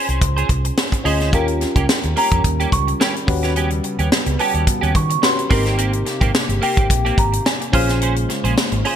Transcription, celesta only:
0.00 1.01 C6 loud
2.17 2.69 A#5 medium
2.73 2.85 C#6 loud
3.02 3.53 B5 medium
4.40 4.92 A5 medium
4.96 5.22 C#6 loud
5.24 5.75 C6 medium
6.63 7.20 G5 medium
7.19 7.47 A#5 medium
7.46 7.72 G#5 medium
7.74 8.96 F6 loud

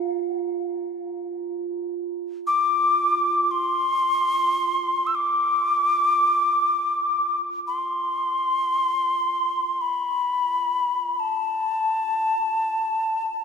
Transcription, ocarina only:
2.47 3.47 D6 medium
3.47 3.52 D6 medium
3.51 5.08 C6 medium
5.07 5.17 E6 medium
5.15 7.39 D6 medium
7.68 9.83 C6 medium
9.81 11.21 B5 medium
11.20 13.44 A5 medium

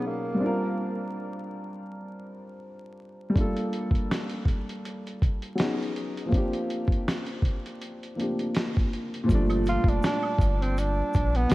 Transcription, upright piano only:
0.00 0.40 B2 medium
0.00 0.39 F#3 medium
0.00 0.40 C#4 medium
0.00 0.41 D#4 medium
0.00 0.42 G#4 medium
0.34 3.28 G3 medium
0.34 3.31 C4 medium
0.40 3.32 D4 medium
0.40 3.33 F4 medium
0.46 3.35 A#4 medium
3.30 5.51 G3 medium
3.30 3.41 A3 medium
3.35 5.55 A#3 medium
3.35 5.54 D4 medium
3.35 5.55 F4 medium
3.41 5.56 A4 medium
5.55 6.31 F#3 medium
5.55 6.31 B3 medium
5.55 6.32 C#4 medium
5.60 6.33 D#4 medium
5.60 6.34 G#4 medium
6.26 8.10 F3 medium
6.26 8.12 A#3 medium
6.31 8.13 C4 medium
6.31 8.14 D4 medium
6.37 8.16 G4 medium
8.16 9.24 F3 soft
8.16 9.28 A#3 soft
8.16 9.29 C4 soft
8.20 9.30 D4 soft
8.20 9.30 G4 medium
9.24 11.44 A#2 medium
9.24 11.45 F3 medium
9.29 11.47 G3 medium
9.29 11.48 A3 medium
9.35 11.50 D4 medium
11.49 11.55 B2 medium
11.49 11.55 D#3 soft

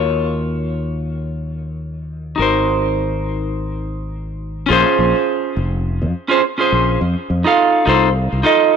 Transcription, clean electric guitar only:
0.00 2.34 F4 medium
0.00 2.35 F#4 medium
0.00 2.36 A#4 medium
0.00 2.37 C#5 medium
2.36 4.65 D#4 medium
2.36 4.66 F#4 medium
2.40 4.67 A#4 medium
2.40 4.68 C5 medium
4.66 5.55 C#4 loud
4.66 5.56 F4 medium
4.71 5.57 G#4 medium
4.71 5.58 C5 loud
6.28 6.40 C#4 medium
6.28 6.41 F4 medium
6.28 6.41 G#4 medium
6.28 6.42 C5 medium
6.58 6.98 C#4 medium
6.58 6.99 F4 medium
6.58 6.99 G#4 medium
6.58 7.00 C5 medium
7.44 7.83 D#4 medium
7.44 7.84 F4 medium
7.44 7.85 A4 medium
7.44 7.85 F5 medium
7.86 8.08 D#4 medium
7.86 8.08 F4 medium
7.86 8.09 A4 medium
7.86 8.09 C5 loud
8.43 8.77 D#4 medium
8.43 8.77 F4 medium
8.43 8.77 A4 medium
8.43 8.77 D#5 loud

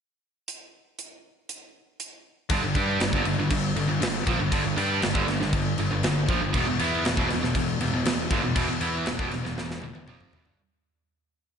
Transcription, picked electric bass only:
2.50 2.62 G1 medium
2.63 2.74 G1 medium
2.75 2.99 G2 medium
3.00 3.12 G1 medium
3.13 3.23 G1 medium
3.24 3.37 G1 medium
3.37 3.50 G1 medium
3.51 3.74 G1 medium
3.75 3.87 G1 medium
3.88 4.00 G1 medium
4.01 4.25 G1 medium
4.27 4.39 A#1 medium
4.39 4.51 G1 medium
4.52 4.64 G1 loud
4.65 4.76 G1 medium
4.77 5.00 G2 medium
5.03 5.14 G1 medium
5.15 5.27 G1 medium
5.28 5.40 G1 medium
5.40 5.52 G1 medium
5.53 5.76 G1 medium
5.78 5.90 G1 medium
5.92 6.03 G1 medium
6.04 6.27 G1 medium
6.29 6.40 A#1 loud
6.40 6.53 G1 medium
6.54 6.66 E1 loud
6.66 6.78 E1 medium
6.80 7.03 E2 medium
7.05 7.17 E1 medium
7.18 7.29 E1 medium
7.30 7.42 E1 medium
7.42 7.54 E1 medium
7.55 7.79 E1 medium
7.81 7.92 E1 medium
7.92 8.04 E1 medium
8.05 8.29 E1 medium
8.31 8.43 G1 loud
8.44 8.55 E1 medium
8.56 8.68 E1 medium
8.69 8.81 E1 medium
8.82 9.05 E2 medium
9.08 9.18 E1 medium
9.19 9.31 E1 medium
9.33 9.44 E1 medium
9.45 9.57 E1 medium
9.57 9.81 E1 medium
9.83 9.94 E1 medium
9.95 10.07 E1 medium
10.07 10.31 F1 medium
10.33 10.44 E1 loud
10.45 10.57 G1 medium

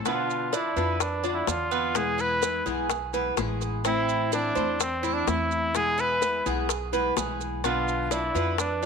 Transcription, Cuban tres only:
0.05 0.52 B3 medium
0.53 0.76 D4 medium
0.76 1.23 B4 medium
1.24 1.70 D4 medium
1.71 2.18 B3 medium
2.18 2.65 E4 medium
2.66 3.12 G#4 medium
3.14 3.37 B4 medium
3.37 3.84 G#4 medium
3.85 4.31 C4 medium
4.32 4.55 E4 medium
4.55 5.02 C5 medium
5.03 5.49 E4 medium
5.98 6.44 E4 medium
6.46 6.92 G#4 medium
6.93 7.16 B4 medium
7.16 7.63 G#4 medium
7.64 8.10 B3 medium
8.11 8.34 D4 medium
8.35 8.81 B4 medium

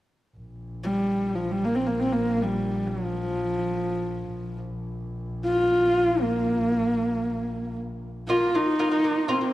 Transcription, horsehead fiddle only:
0.84 1.36 G3 medium
1.35 1.53 F3 medium
1.52 1.66 G3 medium
1.64 1.77 A#3 medium
1.75 1.88 C4 medium
1.87 2.02 A#3 medium
2.00 2.14 C4 medium
2.12 2.43 A#3 medium
2.42 2.89 G3 medium
2.87 4.60 F3 medium
5.45 6.23 F4 medium
6.21 7.77 A#3 medium
8.29 8.57 F4 medium
8.56 9.31 D#4 medium
9.30 9.53 C4 medium

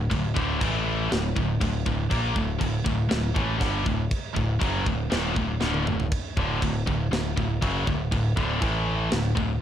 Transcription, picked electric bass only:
0.11 0.34 D1 medium
0.37 0.60 D1 medium
0.61 1.07 A1 medium
1.12 1.34 D1 medium
1.36 1.59 D1 medium
1.62 1.85 D1 medium
1.86 2.09 D1 medium
2.11 2.34 A#1 loud
2.36 2.59 D1 medium
2.61 2.84 D1 medium
2.86 3.09 D1 medium
3.11 3.34 D1 medium
3.37 3.60 A1 loud
3.61 3.84 G1 loud
3.87 4.10 D1 medium
4.37 4.60 D1 medium
4.61 4.84 F#1 medium
4.87 5.10 D1 medium
5.12 5.35 D#1 loud
5.37 5.60 D1 medium
5.62 5.85 D1 loud
5.88 6.10 D1 medium
6.38 6.60 D1 loud
6.63 6.85 D1 medium
6.87 7.10 D1 medium
7.11 7.34 D1 medium
7.38 7.60 D1 medium
7.63 7.85 F#1 loud
7.87 8.10 D1 medium
8.12 8.35 D1 medium
8.37 8.60 D1 medium
8.62 9.08 A1 loud
9.12 9.35 D1 medium
9.38 9.60 D1 medium

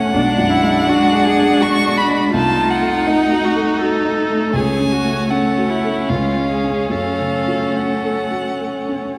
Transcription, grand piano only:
0.00 0.10 A1 medium
0.00 0.18 A2 soft
0.00 0.17 A3 soft
0.00 0.18 C#4 soft
0.00 0.18 F#4 soft
0.00 0.17 A4 soft
0.14 2.29 B1 medium
0.38 0.77 F#2 soft
0.63 1.02 G#3 soft
0.87 1.26 D4 soft
1.12 1.51 G#4 soft
1.38 1.76 D4 soft
1.62 2.00 G#4 soft
1.86 2.24 D4 soft
2.08 2.33 G#3 soft
2.33 4.50 C2 soft
2.57 2.97 C3 soft
2.82 3.21 A3 soft
3.07 3.46 D#4 soft
3.31 3.71 F#4 soft
3.56 3.95 A4 soft
3.81 4.20 F#4 soft
4.05 4.44 D#4 soft
4.31 4.55 A3 soft
4.54 6.04 C#2 soft
4.79 5.19 C#3 soft
5.05 5.46 A3 soft
5.31 5.72 C#4 soft
5.58 5.99 F#4 soft
5.84 6.09 A4 soft
6.09 6.88 C#2 soft
6.37 6.79 G#3 soft
6.64 6.88 C#4 soft
6.64 6.88 G#4 soft
6.90 9.18 F#2 soft
7.20 7.64 C#3 soft
7.48 7.92 F#3 soft
7.76 8.20 C#4 soft
8.03 8.48 A4 soft
8.31 8.76 F#4 soft
8.60 9.04 A4 soft
8.89 9.18 C#4 soft

